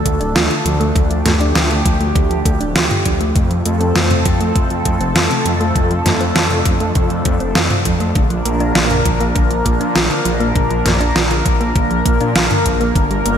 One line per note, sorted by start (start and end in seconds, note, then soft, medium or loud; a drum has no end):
0.00 12.91 F3 medium
0.00 3.31 A3 medium
0.00 3.31 D4 medium
0.00 0.93 A4 medium
0.05 0.19 D2 medium
0.05 0.20 A3 medium
0.05 kick medium
0.05 closed hi-hat medium
0.20 0.34 D1 loud
0.20 0.31 D4 medium
0.20 closed hi-hat soft
0.35 0.49 D2 loud
0.35 0.46 F4 loud
0.35 snare loud
0.35 closed hi-hat medium
0.50 0.61 D3 medium
0.50 closed hi-hat soft
0.65 0.93 D2 medium
0.65 0.72 F3 medium
0.65 closed hi-hat medium
0.80 0.91 A3 loud
0.80 closed hi-hat soft
0.95 1.23 D2 loud
0.95 1.06 D3 medium
0.95 3.33 G4 medium
0.95 kick loud
0.95 closed hi-hat medium
1.10 1.17 F3 medium
1.10 closed hi-hat soft
1.25 1.53 D2 medium
1.25 1.40 A3 medium
1.25 snare medium
1.25 closed hi-hat loud
1.25 mid tom medium
1.40 1.51 D4 medium
1.40 closed hi-hat soft
1.55 1.83 D2 medium
1.55 1.66 F4 medium
1.55 snare loud
1.55 closed hi-hat medium
1.70 1.81 D3 medium
1.70 closed hi-hat soft
1.85 2.13 D2 loud
1.85 1.92 F3 medium
1.85 kick loud
1.85 closed hi-hat loud
2.01 2.11 A3 medium
2.01 closed hi-hat soft
2.15 2.43 D2 medium
2.15 2.26 D3 medium
2.15 kick loud
2.15 closed hi-hat medium
2.30 2.37 F3 medium
2.30 closed hi-hat soft
2.46 2.59 D2 medium
2.46 2.60 A3 medium
2.46 kick loud
2.46 closed hi-hat medium
2.60 2.74 D1 loud
2.60 2.71 D4 medium
2.60 closed hi-hat soft
2.75 2.89 D2 medium
2.75 2.86 F4 loud
2.75 snare loud
2.75 closed hi-hat medium
2.90 3.01 D3 medium
2.90 closed hi-hat soft
2.90 mid tom medium
3.06 3.33 D2 medium
3.06 3.12 F3 medium
3.06 kick medium
3.06 closed hi-hat medium
3.21 3.31 A3 loud
3.21 closed hi-hat soft
3.35 3.63 F2 loud
3.35 3.46 C3 medium
3.35 8.12 A3 medium
3.35 5.73 C4 medium
3.35 8.12 A4 medium
3.35 kick loud
3.35 closed hi-hat medium
3.51 3.57 F3 medium
3.51 closed hi-hat soft
3.66 3.93 F2 medium
3.66 3.80 A3 medium
3.66 closed hi-hat medium
3.81 3.91 C4 medium
3.81 closed hi-hat soft
3.95 4.23 F2 medium
3.95 4.06 F4 loud
3.95 snare loud
3.95 closed hi-hat medium
4.11 4.21 C3 medium
4.11 closed hi-hat soft
4.11 mid tom medium
4.25 4.53 F2 loud
4.25 4.32 F3 medium
4.25 kick loud
4.25 closed hi-hat medium
4.41 4.51 A3 loud
4.41 closed hi-hat soft
4.56 4.83 F2 medium
4.56 4.66 C3 medium
4.56 kick loud
4.56 closed hi-hat medium
4.70 4.77 F3 medium
4.70 closed hi-hat soft
4.85 4.99 F2 medium
4.85 5.00 A3 medium
4.85 kick medium
4.85 closed hi-hat medium
5.00 5.14 F1 loud
5.00 5.11 C4 medium
5.00 closed hi-hat soft
5.15 5.29 F2 medium
5.15 5.26 F4 loud
5.15 snare loud
5.15 closed hi-hat medium
5.31 5.41 C3 medium
5.31 closed hi-hat soft
5.46 5.73 F2 medium
5.46 5.52 F3 medium
5.46 closed hi-hat medium
5.61 5.71 A3 loud
5.61 closed hi-hat soft
5.75 6.03 F2 loud
5.75 5.86 C3 medium
5.75 12.92 D4 medium
5.75 kick loud
5.75 closed hi-hat medium
5.90 5.97 F3 medium
5.90 closed hi-hat soft
6.05 6.33 F2 loud
6.05 6.20 A3 medium
6.05 snare medium
6.05 closed hi-hat medium
6.05 mid tom medium
6.21 6.31 C4 medium
6.21 closed hi-hat soft
6.35 6.63 F2 medium
6.35 6.46 F4 loud
6.35 snare loud
6.35 closed hi-hat medium
6.50 6.61 C3 medium
6.50 closed hi-hat soft
6.65 6.93 F2 loud
6.65 6.72 F3 medium
6.65 kick loud
6.65 closed hi-hat medium
6.80 6.91 A3 medium
6.80 closed hi-hat soft
6.95 7.23 F2 medium
6.95 7.06 C3 medium
6.95 kick loud
6.95 closed hi-hat medium
7.10 7.17 F3 medium
7.10 closed hi-hat soft
7.25 7.39 F2 medium
7.25 7.40 A3 medium
7.25 kick loud
7.25 closed hi-hat medium
7.40 7.54 F1 loud
7.40 7.51 C4 medium
7.40 closed hi-hat soft
7.55 7.69 F2 medium
7.55 7.66 F4 loud
7.55 snare loud
7.55 closed hi-hat medium
7.70 7.81 C3 medium
7.70 closed hi-hat soft
7.70 mid tom medium
7.85 8.13 F2 medium
7.85 7.92 F3 medium
7.85 kick medium
7.85 closed hi-hat medium
8.00 8.11 A3 loud
8.00 closed hi-hat soft
8.15 8.43 A#1 medium
8.15 8.26 D3 medium
8.15 13.38 A#3 medium
8.15 13.38 A#4 medium
8.15 kick loud
8.15 closed hi-hat medium
8.30 8.37 F3 medium
8.30 closed hi-hat soft
8.45 8.73 A#1 medium
8.45 8.60 A#3 medium
8.45 closed hi-hat medium
8.60 8.71 D4 medium
8.60 closed hi-hat soft
8.75 9.03 A#1 medium
8.75 8.86 F4 loud
8.75 snare loud
8.75 closed hi-hat medium
8.90 9.01 D3 medium
8.90 closed hi-hat soft
8.90 mid tom medium
9.05 9.33 A#1 loud
9.05 9.12 F3 medium
9.05 kick loud
9.05 closed hi-hat medium
9.20 9.31 A#3 loud
9.20 closed hi-hat soft
9.35 9.63 A#1 medium
9.35 9.46 D3 medium
9.35 kick loud
9.35 closed hi-hat medium
9.51 9.57 F3 medium
9.51 closed hi-hat soft
9.65 9.79 A#1 medium
9.65 9.80 A#3 medium
9.65 kick medium
9.65 closed hi-hat medium
9.80 9.94 A#2 loud
9.80 9.91 D4 medium
9.80 closed hi-hat soft
9.95 10.09 A#1 medium
9.95 10.06 F4 loud
9.95 snare loud
9.95 closed hi-hat medium
10.10 10.21 D3 medium
10.10 closed hi-hat soft
10.25 10.53 A#1 medium
10.25 10.32 F3 medium
10.25 closed hi-hat medium
10.40 10.51 A#3 loud
10.40 closed hi-hat soft
10.55 10.83 A#1 loud
10.55 10.66 D3 medium
10.55 kick loud
10.55 closed hi-hat medium
10.71 10.77 F3 medium
10.71 closed hi-hat soft
10.85 11.13 A#1 medium
10.85 11.00 A#3 medium
10.85 snare medium
10.85 closed hi-hat medium
10.85 mid tom medium
11.01 11.11 D4 medium
11.01 closed hi-hat soft
11.16 11.43 A#1 loud
11.16 11.26 F4 loud
11.16 snare loud
11.16 closed hi-hat medium
11.31 11.41 D3 medium
11.31 closed hi-hat soft
11.46 11.73 A#1 loud
11.46 11.52 F3 medium
11.46 kick loud
11.46 closed hi-hat medium
11.61 11.71 A#3 loud
11.61 closed hi-hat soft
11.76 12.03 A#1 medium
11.76 11.86 D3 medium
11.76 kick loud
11.76 closed hi-hat medium
11.91 11.97 F3 medium
11.91 closed hi-hat soft
12.06 12.19 A#1 medium
12.06 12.20 A#3 medium
12.06 kick loud
12.06 closed hi-hat medium
12.21 12.34 A#2 loud
12.21 12.31 D4 medium
12.21 closed hi-hat soft
12.36 12.49 A#1 loud
12.36 12.46 F4 loud
12.36 snare loud
12.36 closed hi-hat medium
12.51 12.61 D3 medium
12.51 closed hi-hat soft
12.51 mid tom medium
12.65 12.93 A#1 medium
12.65 12.72 F3 medium
12.65 kick medium
12.65 closed hi-hat medium
12.80 12.91 A#3 loud
12.80 closed hi-hat soft
12.95 13.23 G1 loud
12.95 13.06 D3 medium
12.95 13.38 G3 medium
12.95 13.38 D4 medium
12.95 kick loud
12.95 closed hi-hat medium
13.11 13.17 G3 medium
13.11 closed hi-hat soft
13.26 13.38 G1 medium
13.26 13.38 A#3 medium
13.26 closed hi-hat medium